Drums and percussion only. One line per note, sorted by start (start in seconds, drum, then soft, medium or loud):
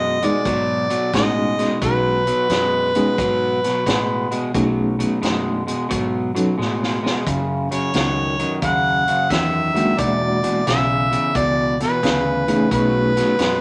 0.23 closed hi-hat medium
0.45 kick loud
0.45 closed hi-hat medium
0.90 closed hi-hat medium
1.13 kick medium
1.13 snare loud
1.13 closed hi-hat medium
1.59 snare soft
1.59 closed hi-hat medium
1.82 kick loud
1.82 closed hi-hat medium
2.27 closed hi-hat medium
2.50 snare medium
2.50 closed hi-hat medium
2.95 closed hi-hat medium
3.18 kick loud
3.18 closed hi-hat medium
3.64 snare soft
3.64 closed hi-hat medium
3.86 kick medium
3.86 snare loud
3.86 closed hi-hat medium
4.31 closed hi-hat medium
4.54 kick medium
4.54 closed hi-hat medium
5.00 closed hi-hat medium
5.23 snare medium
5.23 closed hi-hat medium
5.68 closed hi-hat medium
5.91 kick loud
5.91 closed hi-hat medium
6.36 closed hi-hat medium
6.61 snare soft
6.83 snare medium
7.06 snare medium
7.27 kick loud
7.27 closed hi-hat medium
7.72 closed hi-hat medium
7.94 snare medium
7.94 closed hi-hat medium
8.39 closed hi-hat medium
8.62 kick medium
8.62 closed hi-hat medium
9.08 closed hi-hat medium
9.30 kick medium
9.30 snare loud
9.30 closed hi-hat medium
9.76 closed hi-hat medium
9.98 kick loud
9.98 closed hi-hat medium
10.44 closed hi-hat medium
10.67 snare medium
10.67 closed hi-hat medium
11.12 closed hi-hat medium
11.35 kick loud
11.35 closed hi-hat medium
11.80 snare soft
11.80 closed hi-hat medium
12.03 kick medium
12.03 snare loud
12.03 closed hi-hat medium
12.48 closed hi-hat medium
12.71 kick loud
12.71 closed hi-hat medium
13.17 snare soft
13.17 closed hi-hat medium
13.39 snare medium
13.39 closed hi-hat medium